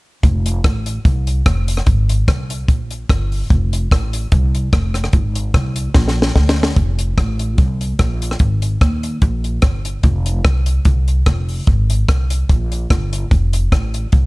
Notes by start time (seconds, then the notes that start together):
0.23 F1, kick, closed hi-hat
0.46 closed hi-hat
0.64 A1, kick, cross-stick, closed hi-hat
0.86 closed hi-hat
1.05 C2, kick, closed hi-hat
1.27 closed hi-hat
1.46 F1, kick, cross-stick, closed hi-hat
1.68 closed hi-hat
1.77 cross-stick
1.86 G#1, kick, closed hi-hat
2.09 closed hi-hat
2.28 C2, kick, cross-stick, closed hi-hat
2.50 closed hi-hat
2.68 A#1, kick, closed hi-hat
2.91 closed hi-hat
3.09 G1, kick, cross-stick, closed hi-hat
3.32 open hi-hat
3.50 F1, kick, closed hi-hat
3.73 closed hi-hat
3.91 A1, kick, cross-stick, closed hi-hat
4.13 closed hi-hat
4.32 C2, kick, closed hi-hat
4.55 closed hi-hat
4.73 F1, kick, cross-stick, closed hi-hat
4.94 cross-stick, closed hi-hat
5.04 cross-stick
5.13 G#1, kick, closed hi-hat
5.35 closed hi-hat
5.54 C2, kick, cross-stick, closed hi-hat
5.76 closed hi-hat
5.94 A#1, kick, snare
6.08 snare
6.22 snare
6.35 D2, kick, snare
6.49 snare
6.63 snare
6.76 F1, kick, closed hi-hat
6.99 closed hi-hat
7.18 A1, kick, cross-stick, closed hi-hat
7.39 closed hi-hat
7.58 C2, kick, closed hi-hat
7.81 closed hi-hat
7.99 A#1, kick, cross-stick, closed hi-hat
8.22 closed hi-hat
8.31 cross-stick
8.39 G#1, kick, closed hi-hat
8.62 closed hi-hat
8.81 D#2, kick, cross-stick, closed hi-hat
9.03 closed hi-hat
9.22 A#1, kick, closed hi-hat
9.44 closed hi-hat
9.62 G1, kick, cross-stick, closed hi-hat
9.85 closed hi-hat
10.03 F1, kick, closed hi-hat
10.26 closed hi-hat
10.45 C2, kick, cross-stick, closed hi-hat
10.66 closed hi-hat
10.85 C2, kick, closed hi-hat
11.08 closed hi-hat
11.26 F1, kick, cross-stick, closed hi-hat
11.49 open hi-hat
11.67 G#1, kick, closed hi-hat
11.90 closed hi-hat
12.08 C2, kick, cross-stick, closed hi-hat
12.30 closed hi-hat
12.49 A#1, kick, closed hi-hat
12.72 closed hi-hat
12.90 G1, kick, cross-stick, closed hi-hat
13.13 closed hi-hat
13.31 F1, kick, closed hi-hat
13.53 closed hi-hat
13.72 A1, kick, cross-stick, closed hi-hat
13.94 closed hi-hat
14.12 C2, kick, closed hi-hat